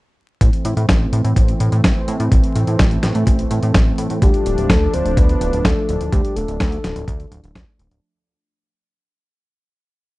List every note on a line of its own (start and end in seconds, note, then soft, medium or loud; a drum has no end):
0.41 0.50 A1 loud
0.41 4.18 E3 medium
0.41 7.99 A3 medium
0.41 4.18 C4 medium
0.41 kick loud
0.41 closed hi-hat medium
0.53 closed hi-hat soft
0.65 0.74 A2 medium
0.65 closed hi-hat medium
0.77 0.86 A2 medium
0.77 closed hi-hat medium
0.89 1.07 A1 loud
0.89 kick loud
0.89 snare loud
0.89 closed hi-hat medium
1.13 1.22 A2 medium
1.13 closed hi-hat medium
1.24 1.34 A2 medium
1.24 closed hi-hat medium
1.36 1.55 A1 medium
1.36 kick loud
1.36 closed hi-hat medium
1.48 closed hi-hat soft
1.60 1.69 A2 medium
1.60 closed hi-hat medium
1.72 1.81 A2 medium
1.72 closed hi-hat medium
1.84 1.93 A1 medium
1.84 kick loud
1.84 snare loud
1.84 closed hi-hat medium
2.08 2.17 A2 loud
2.08 closed hi-hat medium
2.20 2.29 A2 medium
2.20 closed hi-hat medium
2.32 2.41 A1 loud
2.32 kick loud
2.32 closed hi-hat medium
2.44 closed hi-hat soft
2.55 2.65 A2 medium
2.55 closed hi-hat medium
2.67 2.77 A2 medium
2.67 closed hi-hat medium
2.79 2.98 A1 loud
2.79 kick loud
2.79 snare loud
2.79 closed hi-hat medium
2.91 closed hi-hat soft
3.03 3.12 A2 medium
3.03 snare medium
3.03 closed hi-hat medium
3.15 3.24 A2 medium
3.15 closed hi-hat medium
3.27 3.45 A1 medium
3.27 kick loud
3.27 closed hi-hat medium
3.39 closed hi-hat soft
3.51 3.60 A2 medium
3.51 closed hi-hat medium
3.63 3.72 A2 loud
3.63 closed hi-hat medium
3.74 3.93 A1 loud
3.74 kick loud
3.74 snare loud
3.74 closed hi-hat medium
3.98 4.07 A2 medium
3.98 closed hi-hat medium
4.10 4.19 A2 medium
4.10 closed hi-hat medium
4.22 4.31 D2 medium
4.22 7.99 F3 medium
4.22 7.99 D4 medium
4.22 4.67 G4 loud
4.22 kick loud
4.22 closed hi-hat medium
4.34 closed hi-hat soft
4.46 4.55 D1 medium
4.46 closed hi-hat medium
4.58 4.67 D1 medium
4.58 closed hi-hat soft
4.70 4.88 D2 loud
4.70 4.95 A4 loud
4.70 kick loud
4.70 snare loud
4.70 closed hi-hat medium
4.94 5.03 D1 medium
4.94 5.19 C5 loud
4.94 closed hi-hat medium
5.05 5.15 D1 medium
5.05 closed hi-hat medium
5.17 5.36 D2 medium
5.17 5.67 B4 loud
5.17 kick loud
5.17 closed hi-hat medium
5.29 closed hi-hat soft
5.41 5.50 D1 medium
5.41 closed hi-hat medium
5.53 5.62 D1 medium
5.53 closed hi-hat soft
5.65 5.74 D2 medium
5.65 6.12 A4 loud
5.65 kick loud
5.65 snare loud
5.65 closed hi-hat medium
5.89 5.98 D1 loud
5.89 closed hi-hat medium
6.01 6.10 D1 medium
6.01 closed hi-hat medium
6.12 6.22 D2 medium
6.12 6.37 G4 loud
6.12 kick loud
6.12 closed hi-hat medium
6.25 closed hi-hat soft
6.36 6.46 D1 medium
6.36 7.31 A4 medium
6.36 closed hi-hat medium
6.48 6.57 D1 medium
6.48 closed hi-hat soft
6.60 6.79 D2 loud
6.60 kick loud
6.60 snare loud
6.60 closed hi-hat medium
6.72 closed hi-hat soft
6.84 6.93 D1 medium
6.84 snare medium
6.84 closed hi-hat medium
6.96 7.05 D1 medium
6.96 closed hi-hat soft
7.08 7.26 D2 medium
7.08 kick loud
7.08 closed hi-hat medium
7.20 closed hi-hat soft
7.32 7.41 D1 loud
7.32 closed hi-hat medium
7.44 7.53 D1 medium
7.44 closed hi-hat soft
7.55 7.65 D2 medium
7.55 kick loud
7.55 snare loud
7.55 closed hi-hat medium
7.79 7.88 D1 loud
7.79 closed hi-hat medium
7.91 8.00 D1 medium
7.91 closed hi-hat soft